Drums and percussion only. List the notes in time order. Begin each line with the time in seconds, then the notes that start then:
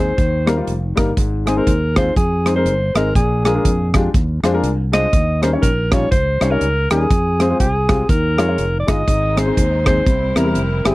0.18 kick, closed hi-hat
0.47 cross-stick, closed hi-hat
0.67 closed hi-hat
0.97 kick, cross-stick, closed hi-hat
1.17 kick, closed hi-hat
1.47 cross-stick, closed hi-hat
1.67 kick, closed hi-hat
1.96 kick, cross-stick, closed hi-hat
2.16 kick, closed hi-hat
2.46 cross-stick, closed hi-hat
2.66 closed hi-hat
2.95 cross-stick, closed hi-hat
3.15 kick, closed hi-hat
3.45 cross-stick, closed hi-hat
3.65 kick, closed hi-hat
3.94 kick, cross-stick, closed hi-hat
4.14 kick, closed hi-hat
4.44 cross-stick, closed hi-hat
4.64 closed hi-hat
4.93 cross-stick, closed hi-hat
5.13 kick, closed hi-hat
5.43 cross-stick, closed hi-hat
5.63 kick, closed hi-hat
5.92 kick, cross-stick, closed hi-hat
6.12 kick, closed hi-hat
6.41 cross-stick, closed hi-hat
6.61 closed hi-hat
6.90 cross-stick, closed hi-hat
7.11 kick, closed hi-hat
7.40 cross-stick, closed hi-hat
7.60 kick, closed hi-hat
7.89 kick, cross-stick, closed hi-hat
8.09 kick, closed hi-hat
8.38 cross-stick, closed hi-hat
8.58 closed hi-hat
8.88 kick, cross-stick, closed hi-hat
9.08 kick, closed hi-hat
9.37 cross-stick, closed hi-hat
9.57 kick, closed hi-hat
9.86 kick, cross-stick, closed hi-hat
10.06 kick, closed hi-hat
10.36 cross-stick, closed hi-hat
10.55 closed hi-hat
10.85 cross-stick, closed hi-hat